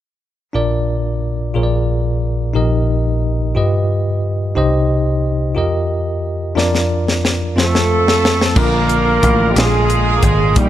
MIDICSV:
0, 0, Header, 1, 7, 480
1, 0, Start_track
1, 0, Key_signature, -2, "major"
1, 0, Tempo, 667408
1, 395, Time_signature, 6, 3, 24, 8
1, 7690, End_track
2, 0, Start_track
2, 0, Title_t, "Horn section"
2, 0, Program_c, 0, 61
2, 5447, Note_on_c, 0, 69, 86
2, 5450, Note_on_c, 0, 60, 59
2, 5450, Note_on_c, 0, 65, 65
2, 6133, Note_off_c, 0, 69, 0
2, 6135, Note_off_c, 0, 60, 0
2, 6135, Note_off_c, 0, 65, 0
2, 6158, Note_on_c, 0, 70, 85
2, 6166, Note_on_c, 0, 65, 61
2, 6167, Note_on_c, 0, 62, 60
2, 6852, Note_off_c, 0, 62, 0
2, 6852, Note_off_c, 0, 65, 0
2, 6877, Note_off_c, 0, 70, 0
2, 6890, Note_on_c, 0, 68, 90
2, 6896, Note_on_c, 0, 65, 67
2, 6898, Note_on_c, 0, 62, 64
2, 7576, Note_off_c, 0, 65, 0
2, 7577, Note_off_c, 0, 62, 0
2, 7602, Note_off_c, 0, 68, 0
2, 7608, Note_on_c, 0, 67, 74
2, 7614, Note_on_c, 0, 58, 50
2, 7616, Note_on_c, 0, 63, 59
2, 7690, Note_off_c, 0, 58, 0
2, 7690, Note_off_c, 0, 63, 0
2, 7690, Note_off_c, 0, 67, 0
2, 7690, End_track
3, 0, Start_track
3, 0, Title_t, "Tine electric piano"
3, 0, Program_c, 1, 4
3, 384, Note_on_c, 1, 62, 58
3, 391, Note_on_c, 1, 65, 49
3, 392, Note_on_c, 1, 34, 46
3, 394, Note_on_c, 1, 70, 50
3, 395, Note_on_c, 1, 46, 47
3, 400, Note_on_c, 1, 74, 67
3, 528, Control_c, 1, 64, 127
3, 985, Note_off_c, 1, 62, 0
3, 989, Note_off_c, 1, 65, 0
3, 990, Note_off_c, 1, 70, 0
3, 993, Note_off_c, 1, 74, 0
3, 1086, Note_off_c, 1, 34, 0
3, 1088, Note_off_c, 1, 46, 0
3, 1108, Note_on_c, 1, 65, 50
3, 1114, Note_on_c, 1, 68, 46
3, 1116, Note_on_c, 1, 34, 47
3, 1117, Note_on_c, 1, 46, 46
3, 1119, Note_on_c, 1, 70, 45
3, 1124, Note_on_c, 1, 73, 41
3, 1127, Control_c, 1, 64, 0
3, 1167, Note_off_c, 1, 73, 0
3, 1173, Note_on_c, 1, 74, 53
3, 1251, Control_c, 1, 64, 127
3, 1708, Note_off_c, 1, 65, 0
3, 1710, Note_off_c, 1, 68, 0
3, 1713, Note_off_c, 1, 70, 0
3, 1740, Note_off_c, 1, 74, 0
3, 1809, Note_off_c, 1, 34, 0
3, 1809, Note_off_c, 1, 46, 0
3, 1823, Note_on_c, 1, 63, 62
3, 1831, Note_on_c, 1, 46, 51
3, 1831, Note_on_c, 1, 67, 50
3, 1832, Note_on_c, 1, 34, 50
3, 1835, Note_on_c, 1, 70, 50
3, 1841, Note_on_c, 1, 75, 63
3, 1845, Control_c, 1, 64, 0
3, 1987, Control_c, 1, 64, 127
3, 2426, Note_off_c, 1, 63, 0
3, 2430, Note_off_c, 1, 67, 0
3, 2432, Note_off_c, 1, 70, 0
3, 2435, Note_off_c, 1, 75, 0
3, 2526, Note_off_c, 1, 46, 0
3, 2527, Note_off_c, 1, 34, 0
3, 2552, Note_on_c, 1, 65, 51
3, 2558, Note_on_c, 1, 43, 51
3, 2559, Note_on_c, 1, 67, 47
3, 2563, Note_on_c, 1, 71, 47
3, 2568, Note_on_c, 1, 75, 59
3, 2569, Control_c, 1, 64, 0
3, 2703, Control_c, 1, 64, 127
3, 3150, Note_off_c, 1, 65, 0
3, 3154, Note_off_c, 1, 67, 0
3, 3156, Note_off_c, 1, 71, 0
3, 3158, Note_off_c, 1, 75, 0
3, 3250, Note_off_c, 1, 43, 0
3, 3274, Note_on_c, 1, 63, 65
3, 3281, Note_on_c, 1, 36, 48
3, 3281, Note_on_c, 1, 67, 58
3, 3284, Note_on_c, 1, 48, 50
3, 3286, Note_on_c, 1, 72, 59
3, 3288, Control_c, 1, 64, 0
3, 3292, Note_on_c, 1, 75, 70
3, 3411, Control_c, 1, 64, 127
3, 3871, Note_off_c, 1, 63, 0
3, 3874, Note_off_c, 1, 67, 0
3, 3877, Note_off_c, 1, 72, 0
3, 3880, Note_off_c, 1, 75, 0
3, 3971, Note_off_c, 1, 36, 0
3, 3973, Note_off_c, 1, 48, 0
3, 3990, Note_on_c, 1, 65, 50
3, 3998, Note_on_c, 1, 67, 47
3, 4002, Note_on_c, 1, 41, 45
3, 4003, Note_on_c, 1, 70, 50
3, 4008, Control_c, 1, 64, 0
3, 4011, Note_on_c, 1, 75, 57
3, 4148, Control_c, 1, 64, 127
3, 4589, Note_off_c, 1, 65, 0
3, 4593, Note_off_c, 1, 67, 0
3, 4595, Note_off_c, 1, 70, 0
3, 4599, Note_off_c, 1, 75, 0
3, 4692, Note_off_c, 1, 41, 0
3, 4713, Note_on_c, 1, 62, 65
3, 4714, Note_on_c, 1, 65, 58
3, 4719, Note_on_c, 1, 41, 54
3, 4724, Note_on_c, 1, 70, 59
3, 4729, Note_on_c, 1, 74, 70
3, 4730, Control_c, 1, 64, 0
3, 4838, Control_c, 1, 64, 127
3, 5310, Note_off_c, 1, 62, 0
3, 5311, Note_off_c, 1, 65, 0
3, 5315, Note_off_c, 1, 70, 0
3, 5318, Note_off_c, 1, 74, 0
3, 5410, Note_off_c, 1, 41, 0
3, 5436, Note_on_c, 1, 60, 55
3, 5439, Note_on_c, 1, 65, 47
3, 5443, Note_on_c, 1, 41, 53
3, 5445, Note_on_c, 1, 69, 48
3, 5448, Control_c, 1, 64, 0
3, 5451, Note_on_c, 1, 72, 54
3, 5567, Control_c, 1, 64, 127
3, 6031, Note_off_c, 1, 60, 0
3, 6032, Note_off_c, 1, 65, 0
3, 6035, Note_off_c, 1, 69, 0
3, 6038, Note_off_c, 1, 72, 0
3, 6131, Note_off_c, 1, 41, 0
3, 6151, Note_on_c, 1, 58, 62
3, 6157, Note_on_c, 1, 50, 50
3, 6157, Note_on_c, 1, 62, 55
3, 6162, Note_on_c, 1, 65, 54
3, 6167, Control_c, 1, 64, 0
3, 6169, Note_on_c, 1, 70, 67
3, 6302, Control_c, 1, 64, 127
3, 6748, Note_off_c, 1, 58, 0
3, 6751, Note_off_c, 1, 62, 0
3, 6753, Note_off_c, 1, 65, 0
3, 6757, Note_off_c, 1, 70, 0
3, 6847, Note_off_c, 1, 50, 0
3, 6869, Note_on_c, 1, 58, 49
3, 6872, Note_on_c, 1, 62, 45
3, 6878, Note_on_c, 1, 46, 46
3, 6882, Note_on_c, 1, 65, 45
3, 6886, Control_c, 1, 64, 0
3, 6886, Note_on_c, 1, 67, 44
3, 6928, Note_off_c, 1, 67, 0
3, 6932, Note_on_c, 1, 68, 53
3, 6994, Control_c, 1, 64, 127
3, 7466, Note_off_c, 1, 58, 0
3, 7467, Note_off_c, 1, 62, 0
3, 7472, Note_off_c, 1, 65, 0
3, 7497, Note_off_c, 1, 68, 0
3, 7567, Note_off_c, 1, 46, 0
3, 7591, Note_on_c, 1, 55, 60
3, 7596, Note_on_c, 1, 58, 55
3, 7602, Note_on_c, 1, 63, 56
3, 7604, Control_c, 1, 64, 0
3, 7605, Note_on_c, 1, 67, 71
3, 7690, Note_off_c, 1, 55, 0
3, 7690, Note_off_c, 1, 58, 0
3, 7690, Note_off_c, 1, 63, 0
3, 7690, Note_off_c, 1, 67, 0
3, 7690, End_track
4, 0, Start_track
4, 0, Title_t, "Tonewheel organ"
4, 0, Program_c, 2, 16
4, 6160, Note_on_c, 2, 50, 49
4, 6162, Note_on_c, 2, 58, 43
4, 6163, Note_on_c, 2, 53, 48
4, 6163, Note_on_c, 2, 65, 54
4, 6878, Note_off_c, 2, 50, 0
4, 6878, Note_off_c, 2, 58, 0
4, 6879, Note_off_c, 2, 53, 0
4, 6879, Note_off_c, 2, 65, 0
4, 6886, Note_on_c, 2, 50, 52
4, 6889, Note_on_c, 2, 56, 47
4, 6889, Note_on_c, 2, 65, 52
4, 6891, Note_on_c, 2, 58, 46
4, 7597, Note_off_c, 2, 58, 0
4, 7600, Note_off_c, 2, 50, 0
4, 7601, Note_off_c, 2, 56, 0
4, 7601, Note_off_c, 2, 65, 0
4, 7605, Note_on_c, 2, 58, 47
4, 7605, Note_on_c, 2, 66, 44
4, 7607, Note_on_c, 2, 51, 49
4, 7607, Note_on_c, 2, 55, 45
4, 7647, Note_off_c, 2, 66, 0
4, 7651, Note_on_c, 2, 67, 54
4, 7690, Note_off_c, 2, 51, 0
4, 7690, Note_off_c, 2, 55, 0
4, 7690, Note_off_c, 2, 58, 0
4, 7690, Note_off_c, 2, 67, 0
4, 7690, End_track
5, 0, Start_track
5, 0, Title_t, "Tenor saxophone"
5, 0, Program_c, 3, 66
5, 5443, Note_on_c, 3, 57, 76
5, 6131, Note_off_c, 3, 57, 0
5, 6172, Note_on_c, 3, 58, 86
5, 6838, Note_on_c, 3, 55, 59
5, 6849, Note_off_c, 3, 58, 0
5, 6891, Note_on_c, 3, 56, 77
5, 6902, Note_off_c, 3, 55, 0
5, 7307, Note_off_c, 3, 56, 0
5, 7311, Note_on_c, 3, 58, 55
5, 7364, Note_on_c, 3, 56, 77
5, 7375, Note_off_c, 3, 58, 0
5, 7599, Note_off_c, 3, 56, 0
5, 7608, Note_on_c, 3, 55, 79
5, 7690, Note_off_c, 3, 55, 0
5, 7690, End_track
6, 0, Start_track
6, 0, Title_t, "Slap bass"
6, 0, Program_c, 4, 36
6, 6160, Note_on_c, 4, 34, 80
6, 6610, Note_off_c, 4, 34, 0
6, 6639, Note_on_c, 4, 33, 71
6, 6858, Note_off_c, 4, 33, 0
6, 6874, Note_on_c, 4, 34, 75
6, 7326, Note_off_c, 4, 34, 0
6, 7356, Note_on_c, 4, 32, 67
6, 7576, Note_off_c, 4, 32, 0
6, 7598, Note_on_c, 4, 34, 88
6, 7690, Note_off_c, 4, 34, 0
6, 7690, End_track
7, 0, Start_track
7, 0, Title_t, "Drums"
7, 4733, Note_on_c, 9, 38, 41
7, 4805, Note_off_c, 9, 38, 0
7, 4852, Note_on_c, 9, 38, 37
7, 4924, Note_off_c, 9, 38, 0
7, 5095, Note_on_c, 9, 38, 43
7, 5167, Note_off_c, 9, 38, 0
7, 5213, Note_on_c, 9, 38, 52
7, 5285, Note_off_c, 9, 38, 0
7, 5454, Note_on_c, 9, 38, 56
7, 5526, Note_off_c, 9, 38, 0
7, 5575, Note_on_c, 9, 38, 54
7, 5647, Note_off_c, 9, 38, 0
7, 5813, Note_on_c, 9, 38, 61
7, 5885, Note_off_c, 9, 38, 0
7, 5934, Note_on_c, 9, 38, 76
7, 6006, Note_off_c, 9, 38, 0
7, 6052, Note_on_c, 9, 38, 65
7, 6124, Note_off_c, 9, 38, 0
7, 6157, Note_on_c, 9, 49, 72
7, 6158, Note_on_c, 9, 36, 85
7, 6229, Note_off_c, 9, 49, 0
7, 6230, Note_off_c, 9, 36, 0
7, 6397, Note_on_c, 9, 42, 45
7, 6469, Note_off_c, 9, 42, 0
7, 6638, Note_on_c, 9, 42, 57
7, 6639, Note_on_c, 9, 36, 62
7, 6710, Note_off_c, 9, 42, 0
7, 6711, Note_off_c, 9, 36, 0
7, 6879, Note_on_c, 9, 42, 68
7, 6893, Note_on_c, 9, 38, 81
7, 6951, Note_off_c, 9, 42, 0
7, 6965, Note_off_c, 9, 38, 0
7, 7118, Note_on_c, 9, 42, 37
7, 7190, Note_off_c, 9, 42, 0
7, 7354, Note_on_c, 9, 42, 60
7, 7355, Note_on_c, 9, 36, 64
7, 7426, Note_off_c, 9, 42, 0
7, 7427, Note_off_c, 9, 36, 0
7, 7595, Note_on_c, 9, 42, 74
7, 7596, Note_on_c, 9, 36, 78
7, 7667, Note_off_c, 9, 42, 0
7, 7668, Note_off_c, 9, 36, 0
7, 7690, End_track
0, 0, End_of_file